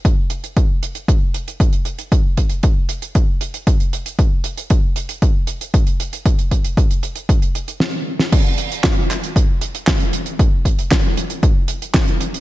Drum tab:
CC |----------------|----------------|----------------|----------------|
HH |x-xxx-xxx-xxxxxx|x-xxx-xxx-xxxxxx|x-xxx-xxx-xxxxxx|xxxxxxxxxxxx----|
CP |----------------|----------------|----------------|----------------|
SD |----------------|----------------|----------------|------------o--o|
BD |o---o---o---o---|o-o-o---o---o---|o---o---o---o---|o-o-o---o-------|

CC |x---------------|----------------|
HH |x-xxx-xxx-xxxxxx|x-xxx-xxx-xxxxxx|
CP |----x-x-----x---|----x-------x---|
SD |----o-------o---|----o-------o---|
BD |o---o---o---o---|o-o-o---o---o---|